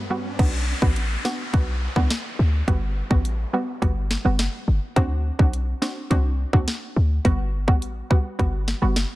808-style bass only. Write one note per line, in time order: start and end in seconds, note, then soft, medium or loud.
0.39 0.74 B1 loud
0.82 1.17 A1 medium
1.54 1.88 B1 loud
1.96 2.08 C2 medium
2.39 2.62 D2 medium
2.68 3.02 G1 loud
3.11 3.45 A1 medium
3.82 4.17 G1 loud
4.25 4.48 F#1 loud
4.68 4.79 G1 medium
4.96 5.31 D2 loud
5.39 5.74 B1 medium
6.11 6.45 C2 medium
6.53 6.65 D2 medium
6.96 7.19 D2 medium
7.25 7.69 G1 loud
7.68 8.02 A1 medium
8.39 8.74 G1 loud
8.82 9.05 F#1 medium